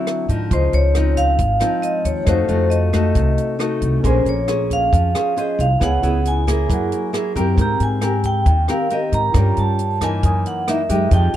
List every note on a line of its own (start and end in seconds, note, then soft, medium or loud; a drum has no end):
0.00 0.49 D3 medium
0.00 0.25 F#3 medium
0.00 0.26 C4 medium
0.00 0.26 E4 medium
0.00 0.26 E5 medium
0.07 cross-stick medium
0.07 closed hi-hat soft
0.29 0.49 G#2 medium
0.29 0.94 F3 medium
0.29 0.95 D#4 medium
0.29 kick soft
0.29 closed hi-hat soft
0.50 0.72 C#2 loud
0.50 1.38 C#3 soft
0.50 1.59 F4 soft
0.50 0.75 C5 medium
0.50 1.60 C6 soft
0.50 kick medium
0.50 closed hi-hat soft
0.54 1.60 D#5 soft
0.73 1.35 C#2 medium
0.73 1.19 C#5 medium
0.73 closed hi-hat soft
0.95 1.39 F3 medium
0.95 1.39 C4 medium
0.95 1.39 D#4 medium
0.95 cross-stick medium
0.95 closed hi-hat soft
1.17 1.85 F5 medium
1.17 kick soft
1.17 closed hi-hat soft
1.38 1.60 G#1 medium
1.38 2.25 G#2 medium
1.38 kick medium
1.38 closed hi-hat medium
1.60 2.23 F3 medium
1.60 2.24 C4 medium
1.60 2.24 D#4 medium
1.60 2.27 F4 soft
1.60 2.27 C5 soft
1.60 2.28 D#5 soft
1.60 cross-stick medium
1.60 closed hi-hat soft
1.82 2.06 D#5 medium
1.82 closed hi-hat soft
2.05 2.26 D#2 medium
2.05 2.28 C#5 medium
2.05 kick soft
2.05 closed hi-hat soft
2.25 2.47 F2 loud
2.25 3.13 F3 medium
2.25 2.46 A3 medium
2.25 3.99 D#4 soft
2.25 2.46 D#4 medium
2.25 4.00 F#4 soft
2.25 2.46 F#4 medium
2.25 2.73 C5 medium
2.25 kick medium
2.25 cross-stick medium
2.25 closed hi-hat medium
2.29 4.01 A4 soft
2.29 4.02 F5 medium
2.48 3.11 F2 loud
2.48 2.90 A3 medium
2.48 2.90 D#4 medium
2.48 2.90 F#4 medium
2.48 closed hi-hat soft
2.70 3.55 D#5 medium
2.70 closed hi-hat soft
2.93 3.56 A3 medium
2.93 3.56 D#4 medium
2.93 3.56 F#4 medium
2.93 kick soft
2.93 cross-stick medium
2.93 closed hi-hat soft
3.15 3.36 C2 medium
3.15 4.01 C3 medium
3.15 kick medium
3.15 closed hi-hat medium
3.38 closed hi-hat soft
3.59 4.02 A3 medium
3.59 4.02 D#4 soft
3.59 4.02 F#4 medium
3.59 cross-stick medium
3.59 closed hi-hat soft
3.82 4.02 C2 medium
3.82 kick soft
3.82 closed hi-hat soft
4.01 4.25 A#1 loud
4.01 4.90 A#3 soft
4.01 5.76 C#4 soft
4.01 4.33 C#4 medium
4.01 4.33 G#4 medium
4.01 5.77 A#4 soft
4.01 kick soft
4.01 closed hi-hat medium
4.05 4.33 C5 medium
4.05 4.26 C5 medium
4.05 5.79 G#5 medium
4.05 5.78 C6 soft
4.26 4.88 A#1 medium
4.26 4.73 C#5 medium
4.26 closed hi-hat soft
4.48 5.11 C#4 medium
4.48 5.11 G#4 medium
4.48 5.11 C5 medium
4.48 cross-stick medium
4.48 closed hi-hat soft
4.70 5.40 F5 medium
4.70 kick soft
4.70 closed hi-hat soft
4.92 5.13 F2 medium
4.92 5.79 F3 medium
4.92 kick medium
4.92 closed hi-hat medium
5.15 5.33 C#4 medium
5.15 5.33 G#4 medium
5.15 5.34 C5 medium
5.15 cross-stick medium
5.15 closed hi-hat soft
5.36 5.65 C#4 medium
5.36 5.65 G#4 medium
5.36 5.66 C5 medium
5.36 5.58 D#5 medium
5.36 closed hi-hat soft
5.59 5.79 C2 medium
5.59 5.83 F5 medium
5.59 kick soft
5.59 closed hi-hat soft
5.78 6.02 C#2 loud
5.78 6.67 C#3 soft
5.78 5.99 B3 soft
5.78 6.65 E4 soft
5.78 5.99 E4 soft
5.78 6.00 G#4 medium
5.78 6.67 B4 soft
5.78 6.68 C#5 soft
5.78 kick soft
5.78 cross-stick medium
5.78 closed hi-hat medium
5.83 6.27 F#5 medium
5.83 6.69 G#5 soft
6.03 6.65 C#2 medium
6.03 6.44 B3 medium
6.03 6.44 E4 medium
6.03 6.44 G#4 medium
6.03 closed hi-hat soft
6.25 7.11 G#5 medium
6.25 closed hi-hat soft
6.47 7.10 A#3 medium
6.47 7.10 E4 soft
6.47 7.10 G#4 medium
6.47 kick soft
6.47 cross-stick soft
6.47 closed hi-hat soft
6.67 6.90 F#2 medium
6.67 7.55 F#3 medium
6.67 7.55 E4 soft
6.67 7.56 G#4 soft
6.67 kick medium
6.67 closed hi-hat medium
6.71 7.57 A#4 soft
6.71 7.58 F#5 soft
6.92 closed hi-hat soft
7.13 7.32 A#3 soft
7.13 7.32 E4 medium
7.13 7.32 G#4 medium
7.13 cross-stick medium
7.13 closed hi-hat soft
7.35 7.56 F#2 medium
7.35 7.98 C4 medium
7.35 7.98 G4 medium
7.35 7.99 A#4 medium
7.35 kick soft
7.35 closed hi-hat soft
7.55 7.78 G#2 loud
7.55 8.43 G#3 soft
7.55 9.30 C4 soft
7.55 kick medium
7.55 closed hi-hat medium
7.59 9.32 A#4 soft
7.59 7.80 A#5 medium
7.59 9.33 G6 soft
7.80 8.42 G#2 medium
7.80 8.27 G#5 medium
7.80 closed hi-hat soft
8.01 8.46 C4 soft
8.01 8.46 G4 medium
8.01 8.46 A#4 medium
8.01 cross-stick medium
8.01 closed hi-hat soft
8.23 8.70 G5 medium
8.23 kick soft
8.23 closed hi-hat soft
8.46 8.67 D#2 medium
8.46 9.33 D#3 medium
8.46 kick medium
8.46 closed hi-hat medium
8.68 8.87 C4 medium
8.68 8.87 G4 medium
8.68 8.87 A#4 medium
8.68 8.92 F5 medium
8.68 cross-stick medium
8.68 closed hi-hat soft
8.90 9.31 C4 medium
8.90 9.31 G4 medium
8.90 9.32 A#4 medium
8.90 9.15 D#5 medium
8.90 closed hi-hat soft
9.12 9.33 G#2 medium
9.12 9.59 A#5 loud
9.12 kick soft
9.12 closed hi-hat soft
9.32 9.55 G2 loud
9.32 10.01 G3 medium
9.32 9.79 C#4 soft
9.32 10.20 F4 soft
9.32 9.79 F4 soft
9.32 10.21 A#4 soft
9.32 9.79 A#4 medium
9.32 10.22 C#5 soft
9.32 kick medium
9.32 cross-stick medium
9.32 closed hi-hat medium
9.38 10.23 G5 medium
9.57 10.19 G2 medium
9.57 10.03 A5 medium
9.57 closed hi-hat soft
9.79 closed hi-hat soft
10.01 10.64 E3 medium
10.01 10.64 A#3 medium
10.01 10.64 D#4 medium
10.01 10.43 G#5 loud
10.01 kick soft
10.01 cross-stick medium
10.01 closed hi-hat soft
10.23 10.44 F#2 medium
10.23 11.10 F#2 medium
10.23 11.10 A#4 soft
10.23 11.11 D#6 soft
10.23 kick medium
10.23 closed hi-hat medium
10.27 11.12 G#5 soft
10.46 10.67 F#5 medium
10.46 closed hi-hat soft
10.68 10.81 E3 soft
10.68 10.81 A#3 medium
10.68 10.81 D#4 medium
10.68 11.09 E5 medium
10.68 cross-stick medium
10.68 closed hi-hat soft
10.89 11.10 F#2 medium
10.89 11.37 G#3 medium
10.89 11.37 D#4 medium
10.89 11.37 G4 medium
10.89 kick soft
10.89 closed hi-hat soft
11.09 11.32 F2 loud
11.09 11.37 F3 medium
11.09 11.37 F4 soft
11.09 kick medium
11.09 closed hi-hat medium
11.13 11.37 D#5 soft
11.13 11.35 G5 medium
11.13 11.37 G5 soft